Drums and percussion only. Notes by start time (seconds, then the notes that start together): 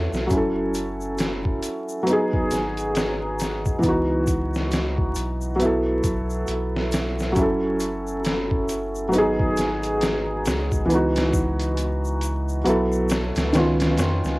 0.13 snare, shaker
0.30 kick, closed hi-hat, shaker
0.74 closed hi-hat, shaker
1.01 shaker
1.18 snare, closed hi-hat, shaker
1.45 kick
1.62 closed hi-hat, shaker
1.89 shaker
2.07 closed hi-hat, shaker
2.33 kick
2.51 snare, closed hi-hat, shaker
2.77 closed hi-hat, shaker
2.95 snare, closed hi-hat, shaker
3.39 snare, closed hi-hat, shaker
3.66 kick, shaker
3.83 kick, closed hi-hat, shaker
4.27 kick, closed hi-hat, shaker
4.54 snare, shaker
4.71 snare, closed hi-hat, shaker
4.98 kick
5.15 closed hi-hat, shaker
5.41 shaker
5.60 closed hi-hat, shaker
6.04 kick, closed hi-hat, shaker
6.30 shaker
6.47 closed hi-hat, shaker
6.76 snare
6.92 snare, closed hi-hat, shaker
7.19 snare, shaker
7.36 kick, closed hi-hat, shaker
7.80 closed hi-hat, shaker
8.07 shaker
8.24 snare, closed hi-hat, shaker
8.51 kick
8.69 closed hi-hat, shaker
8.95 shaker
9.13 closed hi-hat, shaker
9.39 kick
9.57 snare, closed hi-hat, shaker
9.83 closed hi-hat, shaker
10.01 snare, closed hi-hat, shaker
10.46 snare, closed hi-hat, shaker
10.72 kick, shaker
10.90 closed hi-hat, shaker
11.16 snare, closed hi-hat, shaker
11.34 kick, shaker
11.60 closed hi-hat, shaker
11.77 closed hi-hat, shaker
12.05 shaker
12.21 closed hi-hat, shaker
12.49 shaker
12.65 closed hi-hat, shaker
12.92 shaker
13.09 snare, closed hi-hat, shaker
13.36 snare, closed hi-hat, shaker
13.53 snare, closed hi-hat, shaker
13.80 snare, closed hi-hat, shaker
13.97 snare, closed hi-hat, shaker
14.24 snare, shaker